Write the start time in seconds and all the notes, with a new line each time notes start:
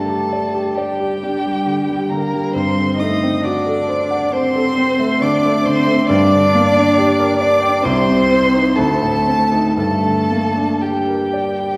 Already playing: G2 D3 G3 A3 D4 A4 A5
0.09 G4
0.33 D5
0.54 G4
0.74 G3 G4 D5 G5
1.00 G4
1.23 D4
1.46 G3
1.66 D3
1.88 G3
2.08 D3 A#3 A#4 A#5
2.33 G3
2.53 G2 C4 C5 C6
2.78 D3
2.96 D#4 D#5 D#6
3.02 A3
3.23 C4
3.42 D4 F#4 D5 D6
3.66 A4
3.89 C5
4.11 F#5
4.31 C4 C5 C6
4.55 A4
4.78 C4
4.99 A3
5.20 D3 D4 D5 D6
5.45 A3
5.64 D3 C4 C5 C6
5.86 A3
6.07 G2 D4 D5 D6
6.33 D3
6.55 A#3
6.76 D4
6.98 G4
7.19 A#4
7.38 D4 D5 D6
7.62 G5
7.82 C2 C4 C5 C6
8.09 C3
8.31 C4
8.54 D#4
8.75 D2 A3 A4 A5
9.03 A2
9.26 C4
9.52 D#4
9.75 G2 A3 A4 A5
10.04 D3
10.31 A#3
10.56 D4
10.80 G3 G4 G5
11.08 A#4
11.33 D5
11.60 G5